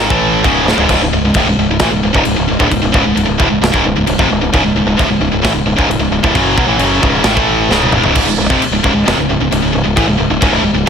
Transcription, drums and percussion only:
0.10 kick loud
0.44 kick loud
0.44 crash medium
0.68 snare medium
0.78 floor tom loud
0.89 kick loud
0.89 splash medium
0.89 crash medium
1.34 kick loud
1.34 crash medium
1.79 kick loud
1.79 snare loud
1.79 crash medium
2.15 kick loud
2.25 crash medium
2.60 kick loud
2.72 kick loud
2.72 crash medium
2.94 kick loud
3.17 crash medium
3.40 kick loud
3.63 snare loud
3.63 crash medium
3.74 kick loud
4.07 crash medium
4.19 kick loud
4.54 kick loud
4.54 crash medium
4.99 kick loud
4.99 crash medium
5.45 kick loud
5.45 snare loud
5.45 crash medium
5.79 kick medium
5.91 crash medium
6.24 kick loud
6.35 kick loud
6.35 crash medium
6.58 kick loud
6.79 crash medium
7.03 kick loud
7.24 snare loud
7.24 crash medium
7.37 kick loud
7.71 snare medium
7.82 mid tom medium
7.92 mid tom loud
8.04 floor tom medium
8.15 kick loud
8.15 crash loud
8.15 crash medium
8.50 kick loud
8.62 crash medium
8.84 kick loud
9.08 snare loud
9.08 crash medium
9.52 crash medium
9.97 kick loud
9.97 crash medium
10.42 kick loud
10.42 crash medium

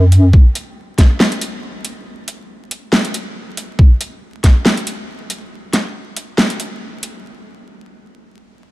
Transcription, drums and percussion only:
0.12 closed hi-hat medium
0.33 kick loud
0.55 closed hi-hat medium
0.98 kick medium
0.98 snare medium
0.98 closed hi-hat medium
1.20 snare loud
1.32 closed hi-hat soft
1.41 closed hi-hat medium
1.85 closed hi-hat medium
2.28 closed hi-hat medium
2.71 closed hi-hat medium
2.92 snare loud
3.05 closed hi-hat soft
3.14 closed hi-hat medium
3.57 closed hi-hat medium
3.79 kick loud
4.01 closed hi-hat medium
4.44 kick medium
4.44 snare medium
4.44 closed hi-hat medium
4.65 snare loud
4.77 closed hi-hat soft
4.87 closed hi-hat medium
5.30 closed hi-hat medium
5.73 snare medium
5.73 closed hi-hat medium
6.16 closed hi-hat medium
6.38 snare loud
6.50 closed hi-hat soft
6.60 closed hi-hat medium
7.03 closed hi-hat medium

